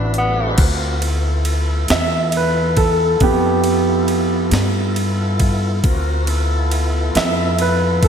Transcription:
0.00 0.56 A1 medium
0.00 0.29 B3 medium
0.00 0.15 D4 medium
0.00 0.38 E4 medium
0.00 0.55 F#4 medium
0.00 0.49 B4 medium
0.14 closed hi-hat medium
0.18 0.59 B3 medium
0.25 0.53 G3 medium
0.30 0.55 A3 medium
0.30 0.56 B3 medium
0.34 0.57 C4 medium
0.34 0.59 D4 medium
0.39 0.60 E4 medium
0.39 0.55 F4 medium
0.46 0.63 G4 medium
0.46 0.64 A4 medium
0.51 0.66 B4 medium
0.51 0.67 C5 medium
0.57 1.86 D2 medium
0.57 1.02 C4 medium
0.57 1.00 F4 medium
0.57 1.02 F#4 medium
0.57 1.02 A#4 medium
0.57 kick loud
0.57 crash medium
0.57 ride medium
1.01 5.79 B3 medium
1.01 5.80 E4 medium
1.01 5.79 F4 medium
1.01 5.79 A4 medium
1.01 ride medium
1.45 ride medium
1.88 3.18 E2 medium
1.88 2.34 E5 medium
1.88 snare loud
1.88 ride medium
2.32 ride medium
2.37 2.78 B4 medium
2.77 3.20 A4 medium
2.77 kick medium
2.77 ride medium
3.20 4.49 F2 medium
3.20 4.93 B3 medium
3.20 4.94 G4 medium
3.20 kick medium
3.20 ride medium
3.64 ride medium
4.08 ride soft
4.51 5.80 G2 medium
4.51 snare loud
4.51 ride medium
4.96 ride medium
5.40 kick medium
5.40 ride medium
5.83 7.11 D2 medium
5.83 6.28 C4 medium
5.83 6.26 F4 medium
5.83 6.28 F#4 medium
5.83 6.28 A#4 medium
5.83 kick loud
5.83 ride medium
6.26 8.08 B3 medium
6.26 8.08 E4 medium
6.26 8.08 F4 medium
6.26 8.08 A4 medium
6.26 ride medium
6.71 ride medium
7.15 8.08 F2 medium
7.15 7.58 E5 medium
7.15 snare loud
7.15 ride medium
7.59 8.03 B4 medium
7.59 ride medium
8.03 8.08 A4 medium
8.03 kick medium
8.03 ride medium

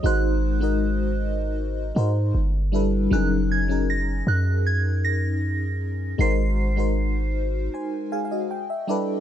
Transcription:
0.03 1.92 G#1 loud
0.03 0.50 G#3 medium
0.03 0.50 D#4 medium
0.03 0.51 F#4 medium
0.03 0.51 A#4 medium
0.03 0.52 C5 loud
0.03 1.16 F#6 medium
0.60 1.70 G#3 medium
0.60 1.70 D#4 medium
0.60 1.71 F#4 medium
0.60 1.71 A#4 medium
0.60 1.72 D#5 medium
1.95 2.33 G#2 loud
1.95 2.34 G#3 medium
1.95 2.34 D#4 medium
1.95 2.35 F#4 medium
1.95 2.35 A#4 medium
1.95 2.36 C5 medium
2.35 3.08 G1 loud
2.72 3.04 G3 medium
2.72 3.04 D4 medium
2.72 3.04 E4 medium
2.72 3.05 A4 medium
2.72 3.05 B4 medium
3.10 4.23 F#1 loud
3.10 3.58 F#3 loud
3.10 3.58 C#4 medium
3.10 3.59 D#4 medium
3.10 3.59 G#4 medium
3.10 3.59 A#4 loud
3.10 3.27 F#6 medium
3.52 3.90 G#6 medium
3.68 4.93 F#3 medium
3.68 4.94 C#4 medium
3.68 4.94 D#4 medium
3.68 4.95 G#4 medium
3.68 4.95 A#4 medium
3.90 4.29 A#6 medium
4.27 6.15 F#2 loud
4.27 4.63 F#6 medium
4.67 5.02 G#6 loud
5.05 6.23 A#6 loud
6.18 7.69 G#1 loud
6.18 6.65 G#3 loud
6.18 6.66 D#4 medium
6.18 6.66 F#4 medium
6.18 6.67 A#4 medium
6.18 6.67 C5 loud
6.18 7.31 C7 loud
6.76 7.85 G#3 medium
6.76 7.86 D#4 medium
6.76 7.73 F#4 medium
6.76 7.74 A#4 medium
6.76 7.73 C5 medium
7.74 8.10 C5 medium
7.74 8.10 G#5 medium
8.12 8.30 G#4 medium
8.12 8.24 F5 medium
8.12 8.24 G#5 medium
8.25 8.48 F5 medium
8.31 8.68 F#4 medium
8.31 8.68 D#5 medium
8.51 8.68 G5 medium
8.70 8.87 E5 medium
8.87 9.19 G3 medium
8.87 9.19 D4 medium
8.87 9.20 E4 medium
8.87 9.20 A4 medium
8.87 9.20 B4 medium
8.87 9.20 D5 medium

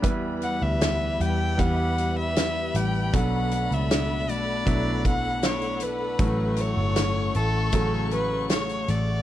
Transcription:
0.00 0.58 E2 medium
0.00 3.13 E2 medium
0.00 1.16 E3 medium
0.00 0.43 G3 medium
0.00 1.51 G3 medium
0.00 0.43 B3 soft
0.00 1.51 B3 medium
0.00 0.12 D4 soft
0.00 1.51 E4 medium
0.00 1.51 B4 medium
0.00 3.10 B4 medium
0.00 3.10 E5 medium
0.00 6.15 B5 medium
0.00 kick medium
0.00 closed hi-hat medium
0.04 3.11 G4 medium
0.42 1.19 G3 soft
0.42 0.64 F#5 medium
0.42 closed hi-hat medium
0.62 1.16 D2 medium
0.62 1.23 E5 medium
0.81 1.59 B3 medium
0.81 snare loud
0.81 closed hi-hat medium
1.20 1.56 E2 medium
1.20 1.97 G3 soft
1.20 1.61 G5 medium
1.20 closed hi-hat medium
1.58 2.71 E2 medium
1.58 3.05 G3 medium
1.58 3.05 B3 medium
1.58 2.37 B3 medium
1.58 3.06 E4 medium
1.58 3.06 G4 medium
1.58 2.18 F#5 medium
1.58 kick medium
1.58 closed hi-hat medium
1.98 2.75 G3 soft
1.98 closed hi-hat medium
2.18 2.78 E5 medium
2.36 3.55 B3 medium
2.36 snare medium
2.36 closed hi-hat medium
2.75 3.11 A1 medium
2.75 3.22 G3 medium
2.75 3.17 G5 medium
2.75 closed hi-hat medium
3.13 3.67 B1 medium
3.13 4.25 B2 medium
3.13 6.20 B2 medium
3.13 4.59 F#3 medium
3.13 4.59 B3 medium
3.13 6.16 D4 medium
3.13 4.59 D4 medium
3.13 9.22 A4 medium
3.13 4.60 A4 medium
3.13 9.22 F#5 medium
3.13 3.75 F#5 medium
3.13 kick loud
3.13 closed hi-hat medium
3.51 4.29 A3 medium
3.51 closed hi-hat medium
3.71 4.29 C#2 medium
3.71 4.32 E5 medium
3.71 closed hi-hat soft
3.91 4.66 D4 medium
3.91 snare medium
3.91 closed hi-hat medium
4.29 4.64 B1 medium
4.29 5.05 A3 medium
4.29 5.07 D5 medium
4.29 closed hi-hat medium
4.66 6.16 B1 medium
4.66 6.11 F#3 medium
4.66 6.12 B3 medium
4.66 5.42 D4 medium
4.66 6.12 D4 medium
4.66 6.12 E4 medium
4.66 kick medium
4.66 closed hi-hat medium
5.05 5.81 A3 medium
5.05 5.46 F#5 loud
5.05 kick medium
5.05 closed hi-hat medium
5.43 6.27 D4 medium
5.43 5.84 C#5 medium
5.43 snare medium
5.43 closed hi-hat medium
5.61 closed hi-hat soft
5.80 6.58 A3 medium
5.80 6.62 B4 medium
5.80 closed hi-hat medium
6.19 6.73 A1 medium
6.19 7.31 A2 medium
6.19 9.22 A2 medium
6.19 7.66 F#3 medium
6.19 7.66 A3 medium
6.19 7.66 C#4 medium
6.19 7.66 A4 medium
6.19 9.22 C#6 medium
6.19 kick loud
6.19 closed hi-hat medium
6.57 7.34 A3 medium
6.57 closed hi-hat medium
6.61 7.36 C#5 medium
6.77 7.31 G1 medium
6.96 7.72 C#4 medium
6.96 snare loud
6.96 closed hi-hat medium
7.35 7.71 A1 medium
7.35 8.11 A3 medium
7.35 8.09 A4 medium
7.35 closed hi-hat medium
7.72 8.84 A1 medium
7.72 9.20 C#3 medium
7.72 9.19 F#3 medium
7.72 9.20 A3 medium
7.72 8.50 C#4 medium
7.72 9.20 A4 medium
7.72 kick medium
7.72 closed hi-hat medium
8.11 8.87 A3 medium
8.11 8.48 B4 medium
8.11 closed hi-hat medium
8.50 8.92 C#5 medium
8.50 snare loud
8.50 closed hi-hat medium
8.69 closed hi-hat soft
8.88 9.22 A1 medium
8.88 9.22 A3 medium
8.88 9.22 D5 medium
8.88 closed hi-hat medium

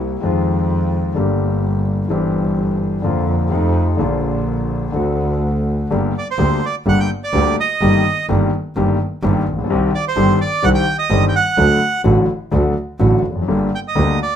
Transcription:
0.00 0.19 C2 medium
0.00 0.19 C3 medium
0.00 0.19 G3 soft
0.00 0.19 A#3 soft
0.00 0.20 E4 medium
0.21 1.12 F2 medium
0.21 1.11 D#3 medium
0.21 1.12 F3 medium
0.21 1.12 G#3 soft
0.21 1.12 C4 medium
0.25 1.13 F4 medium
1.14 2.06 G1 medium
1.14 2.06 G2 medium
1.14 2.05 D3 medium
1.14 2.05 G3 soft
1.14 2.06 A#3 soft
1.14 2.06 G4 medium
2.08 3.00 G1 medium
2.08 3.00 G2 medium
2.08 2.98 E3 medium
2.08 2.99 G3 medium
2.08 3.00 C4 medium
2.08 3.00 G4 medium
3.02 3.49 F2 medium
3.02 3.48 D3 medium
3.02 3.49 F3 medium
3.02 3.50 A#3 medium
3.06 3.50 F4 medium
3.50 3.97 F2 medium
3.50 3.96 C3 medium
3.50 3.97 F3 medium
3.50 3.97 A3 medium
3.54 3.98 D#4 medium
3.97 4.89 A#1 medium
3.97 4.90 A#1 medium
3.97 4.89 A#2 medium
3.97 4.88 D3 medium
3.97 4.89 F3 medium
3.97 4.90 A#3 medium
4.01 4.90 F4 medium
4.92 5.86 D2 medium
4.92 5.87 D2 medium
4.92 5.86 D3 medium
4.92 5.86 A3 soft
4.92 5.87 C4 soft
4.92 5.87 F#4 medium
5.90 6.11 G1 medium
5.90 6.11 G2 medium
5.90 6.11 D3 medium
5.90 6.11 G3 medium
5.90 6.11 A#3 medium
5.90 6.11 G4 medium
6.18 6.28 D5 medium
6.31 6.65 C5 medium
6.38 6.58 D2 medium
6.38 6.59 D2 medium
6.38 6.59 D3 medium
6.38 6.58 G3 medium
6.38 6.59 A#3 medium
6.38 6.59 G4 medium
6.66 6.75 D5 medium
6.86 7.06 G1 medium
6.86 7.06 G2 medium
6.86 7.06 D3 medium
6.86 7.06 G3 medium
6.86 7.06 A#3 medium
6.86 7.06 G4 medium
6.86 7.00 F#5 medium
7.00 7.10 G5 medium
7.24 7.56 D5 medium
7.33 7.54 D2 medium
7.33 7.54 D3 medium
7.33 7.54 G3 medium
7.33 7.54 A#3 medium
7.33 7.54 G4 medium
7.60 8.26 D#5 medium
7.81 8.01 G1 medium
7.81 8.02 G1 medium
7.81 8.02 G2 medium
7.81 8.02 D#3 medium
7.81 8.02 G3 medium
7.81 8.02 A#3 medium
7.81 8.02 G4 medium
8.29 8.49 G1 medium
8.29 8.49 G2 medium
8.29 8.49 D#3 medium
8.29 8.49 G3 medium
8.29 8.49 A#3 medium
8.29 8.49 G4 medium
8.76 8.96 G1 medium
8.76 8.96 G2 medium
8.76 8.96 D#3 medium
8.76 8.96 G3 medium
8.76 8.96 A#3 medium
8.76 8.96 G4 medium
9.23 9.43 G1 medium
9.23 9.43 G2 medium
9.23 9.43 D#3 medium
9.23 9.43 G3 medium
9.23 9.43 A#3 medium
9.23 9.43 G4 medium
9.46 9.69 A#1 soft
9.53 9.58 A1 soft
9.58 9.64 A#1 medium
9.64 9.70 B1 medium
9.70 9.89 C2 medium
9.70 9.90 C2 medium
9.70 9.90 C3 medium
9.70 9.89 D#3 medium
9.70 9.90 G3 medium
9.70 9.90 C4 medium
9.70 9.90 G4 medium
9.95 10.05 D5 medium
10.08 10.39 C5 medium
10.17 10.36 G1 medium
10.17 10.36 G2 medium
10.17 10.36 D#3 medium
10.17 10.36 G3 medium
10.17 10.36 C4 medium
10.17 10.36 G4 medium
10.41 10.65 D5 medium
10.62 10.83 C2 medium
10.62 10.83 C3 medium
10.62 10.83 D#3 medium
10.62 10.83 G3 medium
10.62 10.83 C4 medium
10.62 10.83 G4 medium
10.62 10.69 F#5 medium
10.75 10.97 G5 medium
10.99 11.25 D#5 medium
11.10 11.30 G1 medium
11.10 11.30 G2 medium
11.10 11.30 D#3 medium
11.10 11.30 G3 medium
11.10 11.30 C4 medium
11.10 11.30 G4 medium
11.28 11.35 G5 medium
11.36 12.02 F#5 medium
11.57 11.77 D2 medium
11.57 11.78 D2 medium
11.57 11.77 D3 medium
11.57 11.77 F#3 medium
11.57 11.77 A3 medium
11.57 11.78 F#4 medium
12.04 12.25 A1 medium
12.04 12.25 A2 medium
12.04 12.24 D3 medium
12.04 12.24 F#3 medium
12.04 12.25 A3 medium
12.04 12.25 F#4 medium
12.51 12.72 D2 medium
12.51 12.72 D3 medium
12.51 12.72 F#3 medium
12.51 12.72 A3 medium
12.51 12.72 F#4 medium
13.00 13.20 A1 medium
13.00 13.20 A2 medium
13.00 13.20 D3 medium
13.00 13.20 F#3 medium
13.00 13.20 A3 medium
13.00 13.20 F#4 medium
13.24 13.47 F1 soft
13.30 13.36 E2 soft
13.35 13.42 F2 soft
13.42 13.48 F#2 medium
13.48 13.68 G1 medium
13.48 13.68 G2 medium
13.48 13.68 D3 medium
13.48 13.68 G3 medium
13.48 13.68 A#3 medium
13.48 13.68 G4 medium
13.75 13.80 G5 medium
13.88 14.19 D#5 medium
13.95 14.16 D2 medium
13.95 14.16 D3 medium
13.95 14.16 G3 medium
13.95 14.16 A#3 medium
13.95 14.16 G4 medium
14.23 14.36 D5 medium

